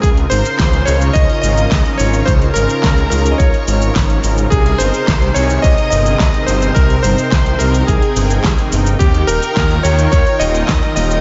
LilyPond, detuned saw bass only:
\new Staff \with { instrumentName = "Detuned saw bass" } { \clef bass \time 4/4 \key aes \major \tempo 4 = 107 des,8 aes,,8 des,8 des,8 des,8 aes,,8 des,8 aes,,8 | des,8 aes,,8 des,8 des,8 des,8 aes,,8 aes,,8 aes,,8 | c,8 g,,8 c,8 c,8 c,8 g,,8 c,8 g,,8 | c,8 g,,8 c,8 c,8 c,8 g,,8 c,8 g,,8 |
ees,8 ees,,8 ees,8 ees,8 ees,8 ees,,8 ees,8 ees,,8 | }